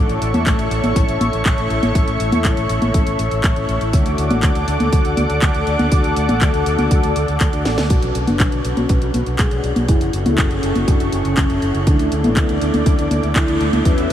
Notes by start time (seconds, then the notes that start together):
Already playing: A3 C#4 E4 A4 C#5 E5 C#6
0.09 A1, closed hi-hat
0.21 A1, closed hi-hat
0.34 E2 A3 C#4 E4 A4, closed hi-hat, high conga
0.46 A1, kick, clap, closed hi-hat
0.59 A1, closed hi-hat
0.71 A1 A3 C#4 E4 A4, closed hi-hat
0.83 A1, closed hi-hat, high conga
0.96 A1, kick, closed hi-hat
1.08 A1 A3 C#4 E4 A4, closed hi-hat
1.21 A1, closed hi-hat, high conga
1.33 A1, closed hi-hat
1.46 A1, kick, clap, closed hi-hat
1.58 A1 A3 C#4 E4 C#5, closed hi-hat
1.70 A1, closed hi-hat
1.83 A1, closed hi-hat, high conga
1.95 A1 A3 C#4 E4 A4, kick, closed hi-hat
2.08 A1, closed hi-hat
2.20 A1, closed hi-hat
2.32 E2 A3 C#4 E4 A4, closed hi-hat, high conga
2.45 A1, kick, clap, closed hi-hat
2.57 A1, closed hi-hat
2.69 A1 A3 C#4 E4 A4, closed hi-hat
2.82 A1, closed hi-hat, high conga
2.94 A1, kick, closed hi-hat
3.07 A1 A3 C#4 E4 A4, closed hi-hat
3.19 A1, closed hi-hat
3.31 A1, closed hi-hat
3.44 A1, kick, clap, closed hi-hat
3.56 A1 A3 C#4 E4 C#5, closed hi-hat
3.69 A1, closed hi-hat
3.81 A1, closed hi-hat
3.93 D2 A3 D4 F#4 A4 D5 F#5 D6, kick, closed hi-hat
4.06 D2, closed hi-hat
4.18 D2, closed hi-hat
4.31 A1 A3 D4 F#4 A4, closed hi-hat, high conga
4.43 D2, kick, clap, closed hi-hat
4.55 D2, closed hi-hat
4.68 D2 A3 D4 F#4 A4, closed hi-hat
4.80 D2, closed hi-hat, high conga
4.93 D2, kick, closed hi-hat
5.05 D2 A3 D4 F#4 A4, closed hi-hat
5.17 D2, closed hi-hat, high conga
5.30 D2, closed hi-hat
5.42 D2, kick, clap, closed hi-hat
5.54 D2 A3 D4 F#4 D5, closed hi-hat
5.67 D2, closed hi-hat
5.79 D2, closed hi-hat, high conga
5.92 D2 A3 D4 F#4 A4, kick, closed hi-hat
6.04 D2, closed hi-hat
6.17 D2, closed hi-hat
6.29 A1 A3 D4 F#4 A4, closed hi-hat, high conga
6.41 D2, kick, clap, closed hi-hat
6.54 D2, closed hi-hat
6.66 D2 A3 D4 F#4 A4, closed hi-hat
6.79 D2, closed hi-hat, high conga
6.91 D2, kick, closed hi-hat
7.03 D2 A3 D4 F#4 A4, closed hi-hat
7.16 D2, closed hi-hat
7.28 D2, closed hi-hat
7.41 D2, kick, clap, closed hi-hat
7.53 D2 A3 D4 F#4 D5, closed hi-hat
7.65 A1, snare, closed hi-hat
7.78 D2, snare, closed hi-hat
7.90 B1 C#4 D4 F#4 B4 F#5 C#6, kick, closed hi-hat
8.03 B1, closed hi-hat
8.15 B1, closed hi-hat
8.27 F#1 D4 F#4 B4 C#5, closed hi-hat, high conga
8.40 B1, kick, clap, closed hi-hat
8.52 B1, closed hi-hat
8.65 B1 C#4 D4 F#4 B4, closed hi-hat
8.77 B1 F#4, closed hi-hat, high conga
8.89 B1, kick, closed hi-hat
9.02 B1 C#4 D4 F#4 B4, closed hi-hat
9.14 B1, closed hi-hat, high conga
9.26 B1, closed hi-hat
9.39 B1 G#4, kick, clap, closed hi-hat
9.51 B1 D4 F#4 C#5 D5, closed hi-hat
9.64 B1, closed hi-hat
9.76 B1, closed hi-hat, high conga
9.88 F#1 C#4 E4 F#4 A4 E5 C#6, kick, closed hi-hat
10.01 F#1, closed hi-hat
10.13 F#1, closed hi-hat
10.26 C#2 C#4 E4 F#4 A4, closed hi-hat, high conga
10.38 F#1, kick, clap, closed hi-hat
10.51 F#1 C#4, closed hi-hat
10.63 F#1 C#4 E4 F#4 A4, closed hi-hat
10.75 F#1, closed hi-hat, high conga
10.88 F#1 D4, kick, closed hi-hat
11.00 F#1 C#4 E4 F#4 A4, closed hi-hat
11.12 F#1 C#4, closed hi-hat
11.25 F#1, closed hi-hat
11.37 F#1, kick, clap, closed hi-hat
11.50 F#1 C#4 E4 F#4 C#5, closed hi-hat
11.62 F#1, closed hi-hat
11.75 F#1, closed hi-hat
11.87 D2 A3 D4 E4 A4 D5 D6, kick, closed hi-hat
11.99 D2, closed hi-hat
12.12 D2, closed hi-hat
12.24 A1 A3 B3 D4 E4 A4, closed hi-hat, high conga
12.37 D2, kick, clap, closed hi-hat
12.49 D2, closed hi-hat
12.61 D2 A3 D4 E4 A4, closed hi-hat
12.74 D2 D4, closed hi-hat, high conga
12.86 D2, kick, closed hi-hat
12.99 D2 A3 D4 E4 A4, closed hi-hat
13.11 D2, closed hi-hat, high conga
13.23 D2, closed hi-hat
13.36 E4, kick, clap, closed hi-hat
13.48 D2 A3 D4 E4 D5, closed hi-hat
13.61 D2, closed hi-hat
13.73 D2, closed hi-hat, high conga
13.85 E2 B3 C#4 E4 F#4 B4 E5 F#5 E6, kick, closed hi-hat
13.98 E2, closed hi-hat